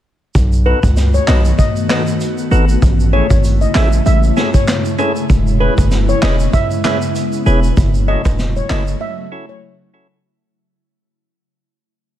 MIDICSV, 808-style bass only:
0, 0, Header, 1, 2, 480
1, 0, Start_track
1, 0, Tempo, 618557
1, 271, Time_signature, 4, 2, 24, 8
1, 9459, End_track
2, 0, Start_track
2, 0, Title_t, "808-style bass"
2, 0, Program_c, 0, 38
2, 272, Note_on_c, 0, 35, 108
2, 575, Note_off_c, 0, 35, 0
2, 645, Note_on_c, 0, 37, 95
2, 926, Note_off_c, 0, 37, 0
2, 992, Note_on_c, 0, 35, 96
2, 1186, Note_off_c, 0, 35, 0
2, 1950, Note_on_c, 0, 32, 89
2, 2145, Note_off_c, 0, 32, 0
2, 2191, Note_on_c, 0, 33, 107
2, 2495, Note_off_c, 0, 33, 0
2, 2564, Note_on_c, 0, 32, 107
2, 2845, Note_off_c, 0, 32, 0
2, 2911, Note_on_c, 0, 33, 94
2, 3106, Note_off_c, 0, 33, 0
2, 3152, Note_on_c, 0, 33, 116
2, 3346, Note_off_c, 0, 33, 0
2, 4111, Note_on_c, 0, 28, 117
2, 4415, Note_off_c, 0, 28, 0
2, 4484, Note_on_c, 0, 30, 90
2, 4765, Note_off_c, 0, 30, 0
2, 4831, Note_on_c, 0, 28, 104
2, 5026, Note_off_c, 0, 28, 0
2, 5792, Note_on_c, 0, 28, 101
2, 5986, Note_off_c, 0, 28, 0
2, 6032, Note_on_c, 0, 30, 121
2, 6335, Note_off_c, 0, 30, 0
2, 6405, Note_on_c, 0, 28, 98
2, 6685, Note_off_c, 0, 28, 0
2, 6750, Note_on_c, 0, 30, 92
2, 6945, Note_off_c, 0, 30, 0
2, 9459, End_track
0, 0, End_of_file